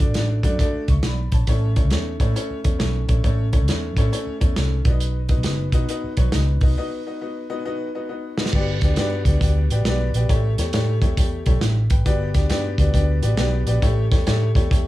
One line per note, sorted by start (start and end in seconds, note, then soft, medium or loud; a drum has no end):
0.00 0.12 A3 medium
0.00 0.12 D4 medium
0.00 0.12 F#4 medium
0.00 0.12 D5 medium
0.00 kick medium
0.07 0.14 A1 medium
0.14 0.40 A1 medium
0.14 0.38 A3 medium
0.14 0.38 D4 medium
0.14 0.38 F#4 medium
0.14 0.38 D5 medium
0.14 snare medium
0.14 closed hi-hat medium
0.43 0.57 F#2 medium
0.43 0.56 A3 loud
0.43 0.56 D4 medium
0.43 0.56 F#4 medium
0.43 0.56 D5 loud
0.43 kick medium
0.43 closed hi-hat medium
0.59 0.82 A3 loud
0.59 0.82 D4 medium
0.59 0.82 F#4 medium
0.59 0.82 D5 loud
0.59 kick medium
0.59 closed hi-hat medium
0.73 muted fingered electric bass stroke soft
0.88 1.01 C#2 medium
0.88 1.04 E5 medium
0.88 1.04 C#6 medium
0.88 kick medium
0.88 closed hi-hat medium
1.02 1.27 B1 medium
1.02 1.32 D5 soft
1.02 1.32 B5 medium
1.02 snare loud
1.02 closed hi-hat medium
1.32 1.45 A#1 medium
1.32 1.47 C#5 medium
1.32 1.75 A5 medium
1.32 kick medium
1.32 closed hi-hat medium
1.47 1.78 A1 medium
1.47 1.71 A3 loud
1.47 1.70 C#4 medium
1.47 1.70 E4 loud
1.47 1.71 C#5 loud
1.47 kick medium
1.47 closed hi-hat medium
1.76 1.89 A3 medium
1.76 1.89 C#4 medium
1.76 1.89 E4 medium
1.76 1.88 C#5 medium
1.76 kick medium
1.76 closed hi-hat medium
1.84 1.90 C#2 medium
1.90 2.16 E2 medium
1.90 2.14 A3 medium
1.90 2.14 C#4 medium
1.90 2.14 E4 medium
1.90 2.14 C#5 medium
1.90 snare medium
1.90 closed hi-hat medium
2.20 2.33 A2 medium
2.20 2.32 A3 loud
2.20 2.32 C#4 medium
2.20 2.32 E4 medium
2.20 2.32 C#5 loud
2.20 kick medium
2.20 closed hi-hat medium
2.35 2.58 A3 medium
2.35 2.58 C#4 medium
2.35 2.58 E4 loud
2.35 2.58 C#5 loud
2.35 closed hi-hat medium
2.50 muted fingered electric bass stroke soft
2.64 2.78 E2 medium
2.64 2.76 A3 medium
2.64 2.76 C#4 medium
2.64 2.76 E4 medium
2.64 2.76 C#5 medium
2.64 kick medium
2.64 closed hi-hat medium
2.79 3.05 B1 medium
2.79 3.02 A3 medium
2.79 3.02 C#4 medium
2.79 3.02 E4 medium
2.79 3.02 C#5 medium
2.79 snare loud
2.79 closed hi-hat medium
3.08 3.22 A#1 medium
3.08 3.21 A3 medium
3.08 3.21 C#4 medium
3.08 3.20 E4 medium
3.08 3.20 C#5 medium
3.08 kick medium
3.08 closed hi-hat medium
3.24 3.55 A1 medium
3.24 3.46 A3 loud
3.24 3.46 C#4 medium
3.24 3.46 E4 medium
3.24 3.46 C#5 loud
3.24 kick medium
3.24 closed hi-hat medium
3.53 3.65 A3 medium
3.53 3.65 C#4 medium
3.53 3.65 E4 medium
3.53 3.65 C#5 medium
3.53 kick medium
3.53 closed hi-hat medium
3.62 3.68 C#2 medium
3.68 3.97 E2 medium
3.68 3.91 A3 medium
3.68 3.91 C#4 medium
3.68 3.91 E4 medium
3.68 3.91 C#5 medium
3.68 snare medium
3.68 closed hi-hat medium
3.97 4.10 A2 medium
3.97 4.09 A3 loud
3.97 4.09 C#4 medium
3.97 4.09 E4 medium
3.97 4.09 C#5 loud
3.97 kick medium
3.97 closed hi-hat medium
4.13 4.35 A3 loud
4.13 4.35 C#4 medium
4.13 4.35 E4 medium
4.13 4.35 C#5 loud
4.13 closed hi-hat medium
4.27 muted fingered electric bass stroke soft
4.40 4.54 E2 medium
4.40 4.53 A3 medium
4.40 4.53 C#4 medium
4.40 4.53 E4 medium
4.40 4.53 C#5 medium
4.40 kick medium
4.40 closed hi-hat medium
4.56 4.81 C2 medium
4.56 4.79 A3 medium
4.56 4.79 C#4 medium
4.56 4.79 E4 medium
4.56 4.79 C#5 medium
4.56 snare loud
4.56 closed hi-hat medium
4.85 5.29 B1 medium
4.85 5.18 B3 medium
4.85 5.18 D#4 medium
4.85 5.18 F#4 medium
4.85 4.89 D5 medium
4.85 kick loud
4.85 closed hi-hat medium
4.91 5.21 D#5 medium
5.00 closed hi-hat medium
5.29 5.41 B3 medium
5.29 5.41 D#4 medium
5.29 5.41 F#4 medium
5.29 5.41 D#5 medium
5.29 kick medium
5.29 closed hi-hat medium
5.37 5.43 B1 medium
5.43 5.69 F#1 medium
5.43 5.67 B3 medium
5.43 5.67 D#4 medium
5.43 5.67 F#4 medium
5.43 5.67 D#5 medium
5.43 snare medium
5.43 closed hi-hat medium
5.72 5.86 B2 medium
5.72 5.85 B3 loud
5.72 5.85 D#4 medium
5.72 5.85 F#4 medium
5.72 5.85 D#5 loud
5.72 kick medium
5.72 closed hi-hat medium
5.89 6.11 B3 loud
5.89 6.11 D#4 medium
5.89 6.11 F#4 loud
5.89 6.11 D#5 loud
5.89 closed hi-hat medium
6.04 muted fingered electric bass stroke soft
6.17 6.30 B1 medium
6.17 6.30 B3 medium
6.17 6.30 D#4 medium
6.17 6.29 F#4 medium
6.17 6.30 C#5 medium
6.17 kick medium
6.17 closed hi-hat medium
6.32 6.57 C#2 medium
6.32 6.56 B3 medium
6.32 6.56 D#4 medium
6.32 6.56 F#4 medium
6.32 6.56 D#5 medium
6.32 snare loud
6.32 closed hi-hat medium
6.61 6.75 C2 medium
6.61 6.74 B3 medium
6.61 6.74 D#4 medium
6.61 6.74 F#4 medium
6.61 6.74 D#5 medium
6.61 kick medium
6.61 open hi-hat soft
6.78 7.00 B3 medium
6.78 7.00 D#4 loud
6.78 7.00 F#4 medium
6.78 7.00 D#5 loud
7.06 7.18 B3 medium
7.06 7.18 D#4 medium
7.06 7.18 F#4 medium
7.06 7.18 D#5 medium
7.21 7.44 B3 medium
7.21 7.44 D#4 medium
7.21 7.43 F#4 medium
7.21 7.44 D#5 medium
7.50 7.62 B3 medium
7.50 7.62 D#4 medium
7.50 7.62 F#4 medium
7.50 7.62 D#5 loud
7.65 7.88 B3 loud
7.65 7.88 D#4 medium
7.65 7.88 F#4 medium
7.65 7.88 D#5 loud
7.95 8.07 B3 medium
7.95 8.07 D#4 medium
7.95 8.06 F#4 medium
7.95 8.06 D#5 medium
8.09 8.32 B3 medium
8.09 8.32 D#4 medium
8.09 8.32 F#4 medium
8.09 8.31 D#5 medium
8.38 8.50 B3 medium
8.38 8.51 D#4 medium
8.38 8.50 F#4 medium
8.38 8.50 D#5 medium
8.38 snare medium
8.46 snare medium
8.53 8.78 G1 loud
8.53 8.76 B3 loud
8.53 8.76 F#4 medium
8.53 8.76 G4 loud
8.53 8.76 D5 loud
8.53 kick medium
8.53 crash medium
8.81 8.95 D2 medium
8.81 8.95 B3 medium
8.81 8.95 F#4 medium
8.81 8.95 G4 medium
8.81 8.95 D5 medium
8.81 kick medium
8.81 snare soft
8.81 closed hi-hat medium
8.96 9.21 G2 medium
8.96 9.20 B3 loud
8.96 9.20 F#4 loud
8.96 9.20 G4 loud
8.96 9.20 D5 loud
8.96 snare loud
8.96 closed hi-hat medium
9.25 9.39 D2 medium
9.25 9.38 B3 medium
9.25 9.38 F#4 medium
9.25 9.38 G4 medium
9.25 9.39 D5 medium
9.25 kick medium
9.25 closed hi-hat medium
9.41 9.66 D2 loud
9.41 9.64 B3 medium
9.41 9.64 F#4 medium
9.41 9.64 G4 medium
9.41 9.64 D5 medium
9.41 kick loud
9.41 closed hi-hat medium
9.70 9.83 A1 medium
9.70 9.83 B3 medium
9.70 9.83 F#4 medium
9.70 9.83 G4 medium
9.70 9.83 D5 medium
9.70 closed hi-hat medium
9.85 10.10 B1 medium
9.85 10.08 B3 loud
9.85 10.08 F#4 medium
9.85 10.08 G4 medium
9.85 10.08 D5 loud
9.85 snare loud
9.85 closed hi-hat medium
10.14 10.27 A#1 medium
10.14 10.27 B3 medium
10.14 10.27 F#4 medium
10.14 10.27 G4 medium
10.14 10.27 D5 medium
10.14 closed hi-hat medium
10.29 10.54 A1 medium
10.29 10.52 A3 loud
10.29 10.52 E4 medium
10.29 10.52 G4 medium
10.29 10.52 C#5 loud
10.29 kick medium
10.29 closed hi-hat medium
10.58 10.71 E2 medium
10.58 10.71 A3 medium
10.58 10.71 E4 medium
10.58 10.71 G4 medium
10.58 10.71 C#5 medium
10.58 snare soft
10.58 closed hi-hat medium
10.73 10.98 A2 medium
10.73 10.96 A3 loud
10.73 10.96 E4 medium
10.73 10.96 G4 loud
10.73 10.96 C#5 loud
10.73 snare loud
10.73 closed hi-hat medium
11.02 11.15 E2 medium
11.02 11.14 A3 medium
11.02 11.14 E4 medium
11.02 11.14 G4 medium
11.02 11.14 C#5 medium
11.02 kick medium
11.02 closed hi-hat medium
11.17 11.42 E2 medium
11.17 11.40 A3 medium
11.17 11.40 E4 medium
11.17 11.40 G4 medium
11.17 11.40 C#5 medium
11.17 kick loud
11.17 closed hi-hat loud
11.46 11.60 B1 medium
11.46 11.58 A3 medium
11.46 11.59 E4 medium
11.46 11.58 G4 medium
11.46 11.59 C#5 medium
11.46 kick medium
11.46 closed hi-hat medium
11.61 11.86 A1 medium
11.61 11.90 G4 soft
11.61 11.90 E5 medium
11.61 snare loud
11.61 closed hi-hat medium
11.90 12.04 G#1 medium
11.90 12.33 B4 medium
11.90 12.33 G5 medium
11.90 kick medium
11.90 closed hi-hat medium
12.05 12.31 G1 loud
12.05 12.28 B3 loud
12.05 12.28 F#4 loud
12.05 12.28 G4 loud
12.05 12.28 D5 loud
12.05 kick loud
12.05 closed hi-hat medium
12.34 12.48 D2 medium
12.34 12.47 B3 medium
12.34 12.47 F#4 medium
12.34 12.47 G4 medium
12.34 12.46 D5 medium
12.34 kick medium
12.34 snare soft
12.34 closed hi-hat medium
12.49 12.75 G2 medium
12.49 12.72 B3 loud
12.49 12.72 F#4 medium
12.49 12.72 G4 loud
12.49 12.72 D5 loud
12.49 snare medium
12.49 closed hi-hat medium
12.78 12.92 D2 medium
12.78 12.91 B3 medium
12.78 12.91 F#4 medium
12.78 12.91 G4 medium
12.78 12.91 D5 loud
12.78 kick medium
12.78 closed hi-hat medium
12.94 13.19 D2 loud
12.94 13.16 B3 medium
12.94 13.17 F#4 medium
12.94 13.17 G4 medium
12.94 13.17 D5 loud
12.94 kick medium
12.94 closed hi-hat medium
13.22 13.36 A1 medium
13.22 13.35 B3 medium
13.22 13.35 F#4 medium
13.22 13.35 G4 medium
13.22 13.35 D5 medium
13.22 closed hi-hat medium
13.37 13.62 B1 medium
13.37 13.61 B3 loud
13.37 13.61 F#4 medium
13.37 13.61 G4 loud
13.37 13.61 D5 loud
13.37 snare loud
13.37 closed hi-hat medium
13.67 13.80 A#1 medium
13.67 13.79 B3 medium
13.67 13.79 F#4 medium
13.67 13.79 G4 medium
13.67 13.79 D5 loud
13.67 closed hi-hat medium
13.82 14.07 A1 medium
13.82 14.05 A3 loud
13.82 14.05 E4 loud
13.82 14.05 G4 loud
13.82 14.05 C#5 loud
13.82 kick loud
13.82 closed hi-hat medium
14.11 14.25 E2 medium
14.11 14.23 A3 medium
14.11 14.23 E4 medium
14.11 14.24 G4 medium
14.11 14.24 C#5 loud
14.11 kick medium
14.11 snare soft
14.11 closed hi-hat medium
14.27 14.51 A2 loud
14.27 14.49 A3 loud
14.27 14.49 E4 loud
14.27 14.49 G4 medium
14.27 14.49 C#5 loud
14.27 snare loud
14.27 closed hi-hat medium
14.55 14.69 E2 medium
14.55 14.67 A3 medium
14.55 14.68 E4 medium
14.55 14.68 G4 medium
14.55 14.68 C#5 medium
14.55 kick medium
14.55 closed hi-hat medium
14.71 14.88 E2 loud
14.71 14.88 A3 medium
14.71 14.88 E4 medium
14.71 14.88 G4 medium
14.71 14.88 C#5 medium
14.71 kick loud
14.71 closed hi-hat medium